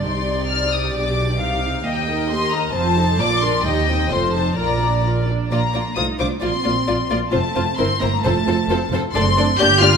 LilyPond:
<<
  \new Staff \with { instrumentName = "Violin section" } { \time 2/4 \key c \dorian \tempo 4 = 133 c'''4 f'''8 ees'''8 | d'''4. r8 | \key bes \major g''4 c'''8 bes''8 | a''4 d'''8 c'''8 |
g''4 c'''8 a''8 | bes''4 r4 | bes''4 ees'''8 d'''8 | c'''4. r8 |
a''4 c'''8 bes''8 | a''4. r8 | \key d \phrygian c'''4 g'''8 f'''8 | }
  \new Staff \with { instrumentName = "Violin section" } { \time 2/4 \key c \dorian d''2~ | d''4 f''4 | \key bes \major ees''2 | c''4 d''4 |
ees''4 c''4 | d''4. r8 | <f' d''>8 <f' d''>8 <f' c''>8 <f' c''>8 | <f' d''>8 <f' d''>8 <f' d''>8 <f' d''>8 |
<f' c''>8 <f' c''>8 <bes' c''>8 <bes' c''>8 | <a' c''>8 <a' c''>8 <a' c''>8 <a' c''>8 | \key d \phrygian <a' d''>8 <a' d''>8 <g' d''>8 <g' d''>8 | }
  \new Staff \with { instrumentName = "Viola section" } { \time 2/4 \key c \dorian << { g'2~ | g'2 | \key bes \major g'8 bes'8 g'8 bes'8 | f'8 a'8 f'8 bes'8 |
g'8 ees'8 a'8 c''8 | bes'8 d''8 bes'8 d''8 | d'8 d'8 f'8 f'8 | f'8 f'8 f'8 f'8 |
f'8 f'8 e'8 e'8 | f'8 f'8 f'8 f'8 | \key d \phrygian d'8 d'8 d'8 d'8 | } \\ { ees'2 | d'4 ees'4 | bes8 ees'8 bes8 ees'8 | c'8 ees'8 bes8 d'8 |
ees'8 c'8 f'8 ees'8 | f'8 d'8 f'8 d'8 | bes8 bes8 a8 a8 | bes8 bes8 bes8 bes8 |
c'8 c'8 c'8 c'8 | c'8 c'8 c'8 c'8 | a8 a8 bes8 bes8 | } >> }
  \new Staff \with { instrumentName = "Cello section" } { \time 2/4 \key c \dorian c2 | b,4 c4 | \key bes \major ees,2 | f,4 bes,4 |
ees,4 f,4 | bes,4. r8 | bes4 ees'8 d'8 | c'4. r8 |
a4 c'8 bes8 | a4. r8 | \key d \phrygian c'4 g'8 f'8 | }
  \new Staff \with { instrumentName = "Double bass section" } { \clef bass \time 2/4 \key c \dorian c,2 | b,,4 c,4 | \key bes \major ees,2 | f,,4 bes,,4 |
ees,4 f,,4 | bes,,4. r8 | bes,,8 bes,,8 c,8 c,8 | bes,,8 bes,,8 bes,,8 bes,,8 |
f,,8 f,,8 g,,8 g,,8 | f,,8 f,,8 f,,8 f,,8 | \key d \phrygian fis,,4 g,,4 | }
>>